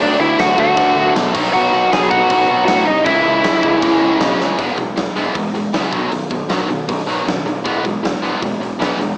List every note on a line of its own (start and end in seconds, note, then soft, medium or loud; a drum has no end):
0.00 0.15 D2 medium
0.00 0.57 D3 medium
0.00 0.60 F#3 loud
0.00 0.58 A3 loud
0.00 0.56 D4 loud
0.00 0.19 D4 medium
0.00 0.20 D5 loud
0.00 crash medium
0.20 0.34 D2 medium
0.20 0.38 E4 medium
0.20 0.39 E5 loud
0.39 0.54 D2 medium
0.39 0.57 F#4 medium
0.39 0.57 F#5 loud
0.39 snare loud
0.39 crash medium
0.58 0.72 D2 loud
0.58 1.33 D3 medium
0.58 1.33 F#3 medium
0.58 1.34 A3 medium
0.58 1.33 D4 medium
0.58 1.12 F#4 medium
0.58 1.12 F#5 medium
0.58 kick medium
0.77 0.92 D2 loud
0.77 kick loud
0.77 crash medium
0.96 1.10 D2 medium
1.16 1.30 B2 loud
1.16 snare loud
1.16 crash medium
1.33 1.49 B1 loud
1.33 2.09 B2 loud
1.33 2.09 F#3 medium
1.33 2.10 B3 loud
1.33 2.08 D#4 loud
1.33 kick loud
1.33 crash loud
1.53 1.68 B1 loud
1.53 1.89 F#4 medium
1.53 1.92 F#5 loud
1.53 crash medium
1.74 1.87 B1 medium
1.92 2.07 B1 medium
1.92 2.10 G#4 medium
1.92 2.10 G#5 loud
1.92 snare loud
1.92 crash medium
2.09 2.25 B1 medium
2.09 2.87 B2 medium
2.09 2.86 F#3 medium
2.09 2.86 B3 medium
2.09 2.85 D#4 medium
2.09 2.63 F#4 medium
2.09 2.66 F#5 loud
2.09 kick loud
2.30 2.44 B1 loud
2.30 kick loud
2.30 crash medium
2.50 2.64 B1 medium
2.65 2.82 A2 medium
2.65 2.84 F#4 medium
2.65 2.85 F#5 loud
2.65 snare loud
2.65 crash medium
2.85 3.01 C2 loud
2.85 3.04 D#4 medium
2.85 3.06 D#5 medium
3.04 3.20 C#2 medium
3.04 3.80 C#3 medium
3.04 3.81 E3 medium
3.04 3.82 G#3 loud
3.04 3.82 C#4 loud
3.04 4.16 E4 medium
3.04 4.17 E5 medium
3.04 kick loud
3.04 crash medium
3.26 3.40 C#2 loud
3.44 3.59 C#2 medium
3.44 snare loud
3.44 crash medium
3.63 3.77 C#2 medium
3.63 kick loud
3.81 3.97 C#2 loud
3.81 4.57 C#3 medium
3.81 4.57 E3 medium
3.81 4.58 G#3 medium
3.81 4.59 C#4 medium
3.81 kick loud
3.81 crash medium
4.03 4.16 C#2 medium
4.20 4.34 B2 loud
4.20 snare loud
4.20 crash medium
4.39 4.54 C#2 medium
4.39 snare medium
4.59 4.70 E1 medium
4.59 4.77 E3 medium
4.59 4.77 G#3 medium
4.59 4.77 B3 medium
4.59 kick loud
4.59 open hi-hat medium
4.77 4.90 B1 medium
4.77 4.95 E3 medium
4.77 4.95 G#3 medium
4.77 kick medium
4.77 open hi-hat medium
4.96 5.09 E1 medium
4.96 5.14 E3 medium
4.96 5.14 G#3 medium
4.96 snare loud
4.96 open hi-hat medium
5.16 5.28 E1 medium
5.16 5.33 E3 medium
5.16 5.34 G#3 loud
5.16 5.34 B3 medium
5.16 open hi-hat medium
5.34 5.47 E1 medium
5.34 5.52 E3 medium
5.34 5.53 G#3 medium
5.34 kick loud
5.34 open hi-hat medium
5.54 5.66 E1 medium
5.54 5.71 E3 medium
5.54 5.71 G#3 medium
5.54 open hi-hat medium
5.73 5.86 C#2 medium
5.73 5.91 E3 medium
5.73 5.92 G#3 medium
5.73 5.92 B3 medium
5.73 snare loud
5.73 open hi-hat medium
5.92 6.04 B1 medium
5.92 6.10 B2 medium
5.92 6.11 D#3 medium
5.92 6.11 F#3 loud
5.92 kick loud
5.92 open hi-hat medium
6.11 6.24 B1 medium
6.11 6.29 B2 medium
6.11 6.29 D#3 medium
6.11 open hi-hat medium
6.30 6.42 B1 medium
6.30 6.48 B2 medium
6.30 6.48 D#3 medium
6.30 kick medium
6.30 open hi-hat medium
6.49 6.62 B1 medium
6.49 6.67 B2 medium
6.49 6.68 D#3 medium
6.49 6.68 F#3 loud
6.49 snare loud
6.49 open hi-hat medium
6.69 6.81 B1 medium
6.69 6.86 B2 medium
6.69 6.86 D#3 medium
6.69 open hi-hat medium
6.88 7.00 B1 loud
6.88 7.05 B2 medium
6.88 7.06 D#3 medium
6.88 kick loud
6.88 open hi-hat medium
7.06 7.19 B1 medium
7.06 7.25 B2 medium
7.06 7.25 D#3 medium
7.06 7.25 F#3 medium
7.06 open hi-hat medium
7.26 7.38 F#2 medium
7.26 7.44 B2 medium
7.26 7.44 D#3 medium
7.26 snare loud
7.26 open hi-hat medium
7.46 7.57 B1 medium
7.46 7.63 B2 medium
7.46 7.63 D#3 medium
7.46 open hi-hat medium
7.64 7.77 E1 medium
7.64 7.82 E3 medium
7.64 7.83 G#3 medium
7.64 7.83 B3 loud
7.64 kick loud
7.64 open hi-hat medium
7.84 7.96 B1 medium
7.84 8.01 E3 medium
7.84 8.01 G#3 medium
7.84 kick medium
7.84 open hi-hat soft
8.03 8.14 E1 medium
8.03 8.20 E3 medium
8.03 8.20 G#3 medium
8.03 snare loud
8.03 open hi-hat medium
8.22 8.34 E1 medium
8.22 8.40 E3 medium
8.22 8.40 G#3 medium
8.22 8.41 B3 medium
8.22 open hi-hat soft
8.42 8.54 E1 medium
8.42 8.59 E3 medium
8.42 8.59 G#3 medium
8.42 kick loud
8.42 open hi-hat medium
8.61 8.73 E1 medium
8.61 8.78 E3 medium
8.61 8.78 G#3 medium
8.61 open hi-hat medium
8.80 8.92 E1 medium
8.80 8.98 E3 loud
8.80 8.98 G#3 medium
8.80 8.98 B3 medium
8.80 snare loud
8.80 open hi-hat medium
8.99 9.10 E1 medium
8.99 9.16 E3 medium
8.99 9.16 G#3 medium
8.99 open hi-hat medium